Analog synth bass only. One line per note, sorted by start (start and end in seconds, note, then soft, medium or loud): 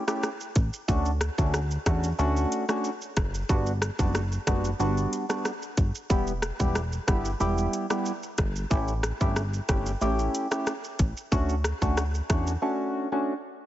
0.56 0.70 A1 medium
0.88 1.29 D2 loud
1.38 1.78 D2 medium
1.86 2.13 E2 medium
2.19 2.46 D2 medium
3.17 3.44 F#1 loud
3.49 3.90 G1 loud
3.99 4.39 F#1 medium
4.47 4.74 F#1 medium
4.80 5.07 G1 loud
5.78 5.92 G1 medium
6.10 6.51 E1 loud
6.60 6.99 E1 medium
7.08 7.35 G1 medium
7.41 7.67 E1 loud
8.38 8.65 G1 medium
8.71 9.12 A1 loud
9.21 9.60 G1 medium
9.69 9.96 G1 medium
10.01 10.28 A1 loud
10.99 11.14 A1 medium
11.32 11.73 D2 loud
11.82 12.21 D2 medium
12.30 12.57 E2 medium